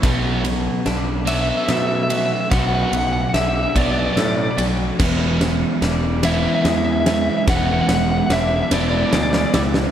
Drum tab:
CC |------------|------------|x-----------|------------|
RD |x-x-x-x-x-x-|x-x-x-x-x-x-|--x-x-x-x-x-|x-x-x-x-x-x-|
SD |o---o---o---|o---o---o---|o-o-o-o-o-o-|o-o-o-o-oooo|
BD |o-----------|o-----o-----|o-----------|o-----------|